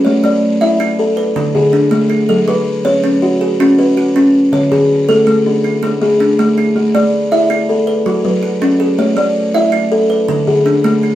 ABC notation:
X:1
M:12/8
L:1/8
Q:3/8=108
K:Dlyd
V:1 name="Kalimba"
z d2 e3 z D G3 z | z B2 c3 z F B3 z | z G2 A3 z D G3 z | z d2 e3 z F B3 z |
z d2 e3 z D G3 z |]
V:2 name="Kalimba"
A,2 z E2 A z2 D,2 A,2 | F,2 z C2 F2 z C2 C2 | D,2 z A,2 D2 z A,2 A,2 | A,2 z E2 A z2 F,2 C2 |
A,2 z E2 A z2 D,2 A,2 |]
V:3 name="Kalimba"
[Gc]2 z e3 B2 z D2 E | A2 z c3 G3 F3 | c2 z A3 E3 D2 E- | E2 z e3 B2 z F2 G |
c2 z e3 B2 z D2 E |]
V:4 name="Kalimba"
z A,2 z E2 z D,2 z A,2 | z F,2 z C2 z C2 z C2 | z D,2 z A,2 z A,2 z A,2 | z A,2 z E2 z F,2 z C2 |
z A,2 z E2 z D,2 z A,2 |]